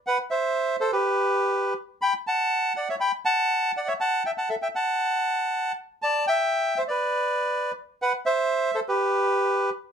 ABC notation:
X:1
M:4/4
L:1/16
Q:1/4=121
K:Em
V:1 name="Bandoneon"
[Bf]2 [ce]4 [Ac] [GB]6- [GB] z2 | [gb]2 [fa]4 [df] [^ce] [gb]2 [fa]4 [df] [ce] | [fa]2 [eg] [fa] [Ae] [eg] [fa]8 z2 | [da]2 [eg]4 [ce] [Bd]6- [Bd] z2 |
[Bf]2 [ce]4 [Ac] [GB]6- [GB] z2 |]